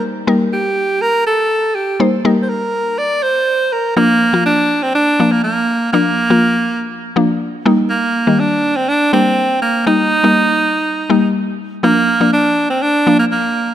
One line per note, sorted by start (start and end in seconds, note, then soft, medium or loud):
0.00 0.18 G3 medium
0.00 0.18 A#3 medium
0.00 0.18 D#4 medium
0.00 0.18 A#4 medium
0.27 0.96 G3 medium
0.27 0.96 A#3 medium
0.27 0.96 D#4 medium
0.27 0.97 A#4 loud
0.53 1.03 G4 loud
1.02 1.26 A#4 loud
1.26 1.77 A4 loud
1.75 2.00 G4 medium
2.00 2.17 G3 medium
2.00 2.17 A#3 medium
2.00 2.17 D#4 medium
2.00 2.17 C5 medium
2.25 2.93 G3 medium
2.25 2.93 A#3 medium
2.25 2.93 D#4 medium
2.25 2.94 A#4 loud
2.42 2.51 C5 medium
2.49 3.00 A#4 loud
2.98 3.24 D5 loud
3.23 3.74 C5 loud
3.73 3.96 A#4 medium
3.97 4.22 F3 medium
3.97 4.42 A#3 loud
3.97 4.22 A#3 medium
3.97 4.23 D4 medium
4.33 4.94 F3 medium
4.33 4.94 A#3 medium
4.33 4.94 F4 medium
4.46 4.84 D4 loud
4.83 4.94 C4 loud
4.95 5.33 D4 loud
5.20 5.71 F3 medium
5.20 5.71 A#3 medium
5.20 5.71 D4 medium
5.32 5.43 A#3 medium
5.44 5.90 A#3 medium
5.93 6.19 F3 medium
5.93 6.88 A#3 loud
5.93 6.19 A#3 medium
5.93 6.19 D4 medium
6.30 6.90 F3 medium
6.30 6.90 A#3 medium
6.30 6.91 F4 medium
7.16 7.65 F3 medium
7.16 7.64 A#3 medium
7.16 7.66 D4 loud
7.66 8.15 G3 loud
7.66 8.15 A#3 medium
7.66 8.15 D#4 loud
7.90 8.41 A#3 medium
8.27 8.87 D#3 medium
8.27 8.87 G3 medium
8.27 8.87 A#3 medium
8.40 8.78 D4 loud
8.76 8.90 C4 loud
8.89 9.13 D4 loud
9.13 9.64 G3 medium
9.13 9.65 A#3 medium
9.13 9.59 C4 loud
9.13 9.65 D4 medium
9.62 9.85 A#3 medium
9.86 10.12 G3 medium
9.86 10.13 A#3 medium
9.86 10.13 D#4 medium
9.86 11.31 D#4 loud
10.23 10.84 G3 medium
10.23 10.84 A#3 medium
10.23 10.84 D#4 medium
11.10 11.61 G3 medium
11.10 11.61 A#3 medium
11.10 11.61 D#4 loud
11.83 12.09 F3 medium
11.83 12.09 A#3 medium
11.83 12.30 A#3 loud
11.83 12.10 D4 medium
12.20 12.81 F3 medium
12.20 12.81 A#3 medium
12.20 12.81 D4 medium
12.33 12.67 D4 loud
12.70 12.84 C4 loud
12.82 13.19 D4 loud
13.07 13.58 F3 medium
13.07 13.58 A#3 medium
13.07 13.58 D4 medium
13.19 13.25 A#3 medium
13.32 13.74 A#3 medium